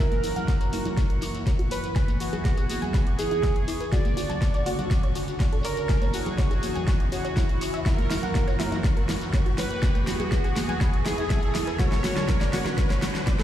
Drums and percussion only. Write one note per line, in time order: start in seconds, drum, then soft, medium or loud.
0.12 closed hi-hat soft
0.12 high conga medium
0.12 shekere soft
0.24 open hi-hat loud
0.24 shekere medium
0.36 closed hi-hat soft
0.36 low conga medium
0.36 shekere soft
0.48 kick loud
0.48 snare soft
0.48 closed hi-hat medium
0.48 high woodblock medium
0.48 shekere soft
0.60 closed hi-hat soft
0.60 shekere soft
0.73 open hi-hat loud
0.73 high conga medium
0.73 shekere medium
0.85 closed hi-hat soft
0.85 low conga medium
0.85 shekere soft
0.97 kick loud
0.97 snare soft
0.97 closed hi-hat medium
0.97 shekere soft
1.10 closed hi-hat soft
1.22 open hi-hat loud
1.22 high woodblock medium
1.22 shekere medium
1.34 closed hi-hat soft
1.34 shekere soft
1.46 kick loud
1.46 snare soft
1.46 closed hi-hat medium
1.46 shekere medium
1.59 closed hi-hat soft
1.71 open hi-hat loud
1.71 shekere medium
1.84 closed hi-hat soft
1.84 shekere soft
1.96 kick loud
1.96 snare medium
1.96 closed hi-hat medium
1.96 shekere medium
2.08 closed hi-hat soft
2.08 high conga medium
2.08 shekere soft
2.20 open hi-hat loud
2.20 shekere medium
2.32 closed hi-hat soft
2.32 low conga medium
2.32 shekere soft
2.45 kick loud
2.45 snare medium
2.45 closed hi-hat medium
2.45 high woodblock medium
2.45 shekere soft
2.57 closed hi-hat soft
2.57 shekere soft
2.70 open hi-hat loud
2.70 high conga medium
2.70 shekere medium
2.82 closed hi-hat soft
2.82 low conga medium
2.82 shekere soft
2.94 kick loud
2.94 snare medium
2.94 closed hi-hat medium
2.94 shekere soft
3.07 closed hi-hat soft
3.07 high woodblock medium
3.19 open hi-hat loud
3.19 shekere medium
3.31 closed hi-hat soft
3.31 shekere soft
3.43 kick loud
3.43 snare medium
3.43 closed hi-hat medium
3.43 shekere medium
3.56 closed hi-hat soft
3.68 open hi-hat loud
3.68 high woodblock medium
3.68 shekere medium
3.80 closed hi-hat soft
3.80 shekere soft
3.92 kick loud
3.92 snare medium
3.92 closed hi-hat medium
3.92 shekere medium
4.05 closed hi-hat soft
4.05 high conga medium
4.05 shekere soft
4.17 open hi-hat loud
4.17 shekere medium
4.30 closed hi-hat soft
4.30 low conga medium
4.30 shekere soft
4.41 kick loud
4.41 snare medium
4.41 closed hi-hat medium
4.41 high woodblock medium
4.41 shekere medium
4.54 closed hi-hat soft
4.54 shekere soft
4.66 open hi-hat loud
4.66 high conga medium
4.66 shekere medium
4.79 closed hi-hat soft
4.79 low conga medium
4.79 shekere soft
4.90 kick loud
4.90 snare medium
4.90 closed hi-hat medium
4.90 shekere medium
5.03 closed hi-hat soft
5.15 open hi-hat loud
5.15 high woodblock medium
5.15 shekere loud
5.28 closed hi-hat soft
5.28 shekere soft
5.39 kick loud
5.39 snare medium
5.39 closed hi-hat medium
5.39 shekere medium
5.53 closed hi-hat soft
5.64 open hi-hat loud
5.64 shekere loud
5.77 closed hi-hat soft
5.77 shekere soft
5.89 kick loud
5.89 snare medium
5.89 closed hi-hat medium
5.89 shekere medium
6.02 closed hi-hat soft
6.02 high conga medium
6.02 shekere soft
6.14 open hi-hat loud
6.14 shekere medium
6.26 closed hi-hat soft
6.26 low conga medium
6.26 shekere soft
6.38 kick loud
6.38 snare medium
6.38 closed hi-hat medium
6.38 high woodblock medium
6.38 shekere medium
6.51 closed hi-hat soft
6.51 shekere soft
6.63 open hi-hat loud
6.63 high conga medium
6.63 shekere medium
6.75 closed hi-hat soft
6.75 low conga medium
6.75 shekere soft
6.87 kick loud
6.87 snare medium
6.87 closed hi-hat medium
6.87 shekere soft
7.00 closed hi-hat soft
7.00 high woodblock medium
7.12 open hi-hat loud
7.12 shekere medium
7.25 closed hi-hat soft
7.25 shekere soft
7.36 kick loud
7.36 snare medium
7.36 closed hi-hat medium
7.36 shekere medium
7.49 closed hi-hat soft
7.61 open hi-hat loud
7.61 high woodblock medium
7.61 shekere loud
7.74 closed hi-hat soft
7.74 shekere soft
7.86 kick loud
7.86 snare medium
7.86 closed hi-hat medium
7.86 shekere medium
7.98 closed hi-hat soft
7.98 high conga medium
7.98 shekere soft
8.10 snare medium
8.10 open hi-hat loud
8.10 shekere medium
8.23 closed hi-hat soft
8.23 low conga medium
8.23 shekere soft
8.35 kick loud
8.35 snare medium
8.35 closed hi-hat medium
8.35 high woodblock medium
8.35 shekere soft
8.48 closed hi-hat soft
8.48 shekere soft
8.60 snare medium
8.60 open hi-hat loud
8.60 high conga medium
8.60 shekere medium
8.72 closed hi-hat soft
8.72 low conga medium
8.72 shekere soft
8.84 kick loud
8.84 snare medium
8.84 closed hi-hat medium
8.84 shekere soft
8.97 closed hi-hat soft
9.09 snare medium
9.09 open hi-hat loud
9.09 high woodblock medium
9.09 shekere medium
9.21 closed hi-hat soft
9.21 shekere soft
9.33 kick loud
9.33 snare medium
9.33 closed hi-hat medium
9.33 shekere medium
9.46 closed hi-hat soft
9.58 snare medium
9.58 open hi-hat loud
9.58 shekere medium
9.71 closed hi-hat soft
9.71 shekere soft
9.82 kick loud
9.82 snare medium
9.82 closed hi-hat medium
9.82 shekere medium
9.95 closed hi-hat soft
9.95 high conga medium
9.95 shekere soft
10.07 snare medium
10.07 open hi-hat loud
10.07 shekere medium
10.20 closed hi-hat soft
10.20 low conga medium
10.20 shekere soft
10.32 kick loud
10.32 snare medium
10.32 closed hi-hat medium
10.32 high woodblock medium
10.32 shekere soft
10.44 closed hi-hat soft
10.44 shekere soft
10.56 snare medium
10.56 open hi-hat loud
10.56 high conga medium
10.56 shekere medium
10.69 closed hi-hat soft
10.69 low conga medium
10.69 shekere soft
10.81 kick loud
10.81 snare medium
10.81 closed hi-hat medium
10.81 shekere medium
10.93 closed hi-hat soft
10.93 high woodblock medium
11.06 snare medium
11.06 open hi-hat loud
11.06 shekere medium
11.18 closed hi-hat soft
11.18 shekere soft
11.30 kick loud
11.30 snare medium
11.30 closed hi-hat medium
11.30 shekere soft
11.43 closed hi-hat soft
11.54 snare medium
11.54 open hi-hat loud
11.54 high woodblock medium
11.54 shekere medium
11.67 closed hi-hat soft
11.67 shekere soft
11.79 kick loud
11.79 snare medium
11.79 closed hi-hat medium
11.79 shekere medium
11.92 snare medium
11.92 closed hi-hat soft
11.92 high conga loud
11.92 shekere soft
12.04 snare loud
12.04 open hi-hat loud
12.04 shekere medium
12.16 snare medium
12.16 closed hi-hat soft
12.16 low conga medium
12.16 shekere soft
12.28 kick loud
12.28 snare loud
12.28 closed hi-hat medium
12.28 high woodblock medium
12.28 shekere soft
12.41 snare medium
12.41 closed hi-hat soft
12.41 shekere soft
12.53 snare medium
12.53 open hi-hat loud
12.53 high conga medium
12.53 shekere medium
12.65 snare medium
12.65 closed hi-hat soft
12.65 low conga medium
12.65 shekere soft
12.78 kick loud
12.78 snare loud
12.78 closed hi-hat medium
12.78 shekere soft
12.90 snare medium
12.90 closed hi-hat soft
13.02 snare loud
13.02 open hi-hat loud
13.02 high woodblock medium
13.02 shekere loud
13.15 snare medium
13.15 closed hi-hat soft
13.15 shekere soft
13.27 kick loud
13.27 snare loud
13.27 closed hi-hat medium
13.27 shekere soft
13.39 snare medium
13.39 closed hi-hat soft